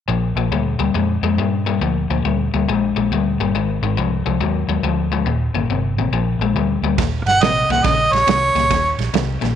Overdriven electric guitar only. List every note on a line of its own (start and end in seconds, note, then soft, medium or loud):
0.08 0.34 A#2 medium
0.08 0.34 F3 medium
0.37 0.50 A#2 medium
0.37 0.51 F3 medium
0.52 0.77 A#2 medium
0.52 0.78 G3 medium
0.79 0.93 A#2 medium
0.79 0.93 G3 medium
0.94 1.20 A#2 medium
0.94 1.20 G#3 medium
1.23 1.37 A#2 medium
1.23 1.37 G#3 medium
1.38 1.64 A#2 medium
1.38 1.64 G3 medium
1.66 1.80 A#2 medium
1.66 1.80 G3 medium
1.81 2.07 A#2 medium
1.81 2.07 F3 medium
2.10 2.23 A#2 medium
2.10 2.24 F3 medium
2.25 2.50 A#2 medium
2.25 2.50 G3 medium
2.54 2.67 A#2 medium
2.54 2.67 G3 medium
2.69 2.94 A#2 medium
2.69 2.94 G#3 medium
2.96 3.10 A#2 medium
2.96 3.10 G#3 medium
3.12 3.37 A#2 medium
3.12 3.37 G3 medium
3.40 3.53 A#2 medium
3.40 3.53 G3 medium
3.55 3.80 G#2 medium
3.55 3.80 D#3 medium
3.83 3.96 G#2 medium
3.83 3.96 D#3 medium
3.97 4.23 G#2 medium
3.97 4.23 F3 medium
4.26 4.39 G#2 medium
4.26 4.39 F3 medium
4.41 4.66 G#2 medium
4.41 4.66 F#3 medium
4.69 4.82 G#2 medium
4.69 4.82 F#3 medium
4.83 5.09 G#2 medium
4.83 5.09 F3 medium
5.12 5.25 G#2 medium
5.12 5.26 F3 medium
5.26 5.52 D#2 medium
5.26 5.52 A#2 medium
5.55 5.68 D#2 medium
5.55 5.68 A#2 medium
5.70 5.95 D#2 medium
5.70 5.95 C3 medium
5.98 6.12 D#2 medium
5.98 6.12 C3 medium
6.13 6.38 A#2 medium
6.13 6.38 F3 medium
6.41 6.54 A#2 medium
6.41 6.55 G#3 medium
6.56 6.81 A#2 medium
6.56 6.81 G3 medium
6.84 6.97 A#2 medium
6.84 6.98 G3 medium
6.98 7.39 D#2 medium
6.98 7.39 A#2 medium
7.43 7.67 D#2 medium
7.43 7.68 C3 medium
7.70 7.83 D#2 medium
7.70 7.84 A#2 medium
7.85 8.25 D#2 medium
7.85 8.25 C#3 medium
8.27 8.53 D#2 medium
8.27 8.53 C3 medium
8.55 8.69 D#2 medium
8.55 8.69 A#2 medium
8.70 9.11 D#2 medium
8.70 9.11 A#2 medium
9.14 9.39 D#2 medium
9.14 9.39 C3 medium
9.41 9.55 D#2 medium
9.41 9.55 A#2 medium